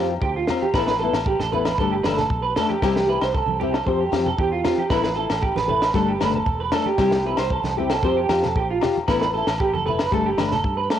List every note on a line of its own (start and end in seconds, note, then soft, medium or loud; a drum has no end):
0.00 0.19 F2 medium
0.00 0.13 C4 soft
0.00 0.12 F4 medium
0.00 0.12 G4 medium
0.21 0.45 D2 medium
0.21 0.34 G4 medium
0.21 kick medium
0.36 0.60 F4 medium
0.47 0.65 C4 soft
0.47 0.65 F4 medium
0.47 muted nylon-string guitar stroke medium
0.47 snare medium
0.47 low conga medium
0.47 low agogo medium
0.62 0.73 G4 medium
0.62 high conga medium
0.74 1.09 A1 medium
0.74 0.90 E3 medium
0.74 0.91 B3 medium
0.74 0.91 E4 medium
0.74 0.91 A4 medium
0.74 0.86 B4 medium
0.74 kick medium
0.74 snare medium
0.74 low agogo medium
0.87 0.99 B4 medium
0.87 snare medium
0.87 high conga medium
0.99 1.17 E4 soft
0.99 1.24 A4 medium
0.99 1.16 A4 soft
1.04 1.18 B3 soft
1.13 1.36 A1 medium
1.13 snare medium
1.13 low agogo medium
1.26 1.39 G4 medium
1.26 kick medium
1.39 1.74 A1 medium
1.39 1.51 A4 medium
1.39 snare soft
1.39 high conga medium
1.52 1.69 B3 soft
1.52 1.69 E4 medium
1.52 1.68 A4 medium
1.52 1.77 B4 medium
1.52 low conga medium
1.65 snare medium
1.65 high conga medium
1.65 low agogo medium
1.78 2.02 G1 medium
1.78 1.95 G3 medium
1.78 1.95 A3 medium
1.78 1.95 D4 medium
1.78 1.91 A4 medium
1.78 1.95 A4 medium
1.78 kick medium
1.91 2.03 G4 medium
2.03 2.28 G1 medium
2.03 2.21 A4 medium
2.03 2.16 B4 medium
2.03 snare medium
2.03 high conga medium
2.03 low agogo medium
2.08 2.22 A3 soft
2.08 2.22 D4 soft
2.17 2.42 A4 medium
2.17 snare soft
2.17 low conga medium
2.30 2.53 B1 medium
2.30 kick medium
2.42 2.55 B4 medium
2.56 2.73 A3 soft
2.56 2.73 D4 medium
2.56 2.68 A4 medium
2.56 2.73 A4 medium
2.56 snare medium
2.56 low conga medium
2.56 low agogo medium
2.69 2.81 G4 medium
2.69 high conga medium
2.82 3.17 C2 medium
2.82 2.98 G3 medium
2.82 2.99 C4 medium
2.82 2.98 E4 medium
2.82 3.07 G4 loud
2.82 2.99 G4 medium
2.82 kick medium
2.82 snare medium
2.82 low agogo medium
2.96 snare medium
2.96 high conga medium
3.07 3.24 E4 soft
3.07 3.23 G4 soft
3.07 3.21 B4 medium
3.07 muted nylon-string guitar stroke soft
3.21 3.45 C2 medium
3.21 3.34 C5 medium
3.21 snare medium
3.21 low agogo medium
3.34 3.59 A4 medium
3.34 kick medium
3.46 3.82 C2 medium
3.46 high conga medium
3.60 3.77 C4 soft
3.60 3.77 E4 soft
3.60 3.73 G4 medium
3.60 3.77 G4 medium
3.60 low conga medium
3.73 3.85 A4 medium
3.73 snare medium
3.73 low agogo soft
3.86 4.09 F2 medium
3.86 4.03 F3 medium
3.86 4.03 C4 medium
3.86 4.03 G4 medium
3.86 3.99 C5 medium
3.86 muted nylon-string guitar stroke medium
3.86 kick medium
4.00 4.25 G4 medium
4.12 4.36 F2 medium
4.12 4.29 C4 soft
4.12 4.28 F4 soft
4.12 4.28 G4 medium
4.12 snare medium
4.12 high conga medium
4.12 low agogo medium
4.26 4.38 A4 medium
4.26 low conga medium
4.38 4.62 E2 medium
4.38 4.52 G4 medium
4.38 kick medium
4.52 4.77 F4 medium
4.64 4.81 C4 medium
4.64 4.81 F4 medium
4.64 4.80 G4 medium
4.64 snare medium
4.64 low conga medium
4.64 low agogo medium
4.78 4.90 G4 medium
4.78 high conga medium
4.90 5.26 A1 medium
4.90 5.07 B3 medium
4.90 5.07 E4 medium
4.90 5.07 A4 medium
4.90 5.02 B4 loud
4.90 kick medium
4.90 snare medium
4.90 low agogo medium
5.03 5.15 B4 medium
5.03 snare medium
5.03 high conga medium
5.16 5.33 E4 soft
5.16 5.41 A4 medium
5.16 5.32 A4 soft
5.30 5.54 A1 medium
5.30 snare medium
5.30 low agogo medium
5.42 5.55 G4 medium
5.42 kick medium
5.55 5.91 A1 medium
5.55 5.68 B4 medium
5.55 snare soft
5.55 high conga medium
5.68 5.85 E4 soft
5.68 5.84 A4 medium
5.68 5.94 B4 medium
5.68 low conga medium
5.82 snare medium
5.82 low agogo soft
5.94 6.18 G1 medium
5.94 6.10 G3 medium
5.94 6.11 A3 medium
5.94 6.11 D4 medium
5.94 6.08 A4 medium
5.94 6.11 A4 medium
5.94 kick medium
5.94 snare soft
6.08 6.21 G4 medium
6.20 6.45 G1 medium
6.20 6.37 A3 soft
6.20 6.36 D4 soft
6.20 6.36 A4 medium
6.20 6.34 B4 medium
6.20 snare medium
6.20 high conga medium
6.20 low agogo medium
6.34 6.59 A4 medium
6.34 low conga medium
6.46 6.70 E1 medium
6.46 kick medium
6.60 6.73 B4 medium
6.72 6.90 A3 soft
6.72 6.89 D4 medium
6.72 6.89 A4 medium
6.72 6.86 A4 medium
6.72 snare medium
6.72 low conga medium
6.72 low agogo medium
6.86 6.99 G4 medium
6.86 high conga medium
6.98 7.34 C2 medium
6.98 7.15 G3 medium
6.98 7.15 C4 medium
6.98 7.15 E4 medium
6.98 7.15 G4 medium
6.98 7.24 G4 loud
6.98 kick medium
6.98 snare medium
6.98 low agogo medium
7.12 snare medium
7.12 high conga soft
7.25 7.42 C4 soft
7.25 7.41 E4 soft
7.25 7.41 G4 soft
7.25 7.39 B4 medium
7.37 7.62 C2 medium
7.37 7.51 C5 medium
7.37 snare medium
7.37 low agogo medium
7.51 7.77 A4 medium
7.51 kick medium
7.64 7.99 C2 medium
7.64 snare soft
7.64 high conga medium
7.77 7.94 C4 medium
7.77 7.94 E4 soft
7.77 7.93 G4 medium
7.77 7.91 G4 medium
7.77 low conga soft
7.90 8.03 A4 medium
7.90 snare medium
7.90 low agogo medium
8.03 8.27 F2 medium
8.03 8.19 C4 medium
8.03 8.20 F4 medium
8.03 8.20 G4 medium
8.03 8.17 C5 medium
8.03 kick loud
8.17 8.42 G4 medium
8.29 8.53 F2 medium
8.29 8.47 F4 soft
8.29 8.45 G4 soft
8.29 snare medium
8.29 high conga medium
8.29 low agogo medium
8.43 8.55 A4 medium
8.43 snare soft
8.43 low conga medium
8.56 8.79 A#1 medium
8.56 8.69 G4 medium
8.56 kick medium
8.71 8.95 F4 medium
8.81 8.99 F4 soft
8.81 8.98 G4 medium
8.81 snare medium
8.81 low conga medium
8.81 low agogo medium
8.97 high conga medium
9.08 9.43 A1 medium
9.08 9.24 B3 medium
9.08 9.25 E4 medium
9.08 9.25 A4 medium
9.08 9.20 B4 medium
9.08 kick medium
9.08 snare medium
9.08 low agogo medium
9.21 9.33 B4 medium
9.21 snare medium
9.21 high conga medium
9.34 9.51 E4 soft
9.34 9.59 A4 medium
9.34 9.50 A4 soft
9.47 9.71 A1 medium
9.47 snare medium
9.47 low agogo medium
9.60 9.73 G4 medium
9.60 kick medium
9.74 10.09 F#1 medium
9.74 9.86 A4 medium
9.74 high conga medium
9.86 10.03 E4 soft
9.86 10.02 A4 medium
9.86 10.11 B4 medium
9.86 low conga medium
9.99 snare medium
9.99 high conga medium
9.99 low agogo soft
10.11 10.36 G1 medium
10.11 10.28 G3 medium
10.11 10.28 A3 medium
10.11 10.29 D4 medium
10.11 10.26 A4 medium
10.11 10.29 A4 medium
10.11 kick medium
10.26 10.38 G4 medium
10.37 10.62 G1 medium
10.37 10.55 A3 soft
10.37 10.55 D4 medium
10.37 10.54 A4 soft
10.37 10.51 B4 medium
10.37 snare medium
10.37 high conga medium
10.37 low agogo medium
10.51 10.77 A4 medium
10.51 snare soft
10.51 low conga medium
10.64 10.88 G2 medium
10.64 kick medium
10.77 10.90 B4 medium
10.90 10.99 A3 soft
10.90 10.99 A4 medium
10.90 muted nylon-string guitar stroke medium
10.90 snare medium
10.90 low agogo medium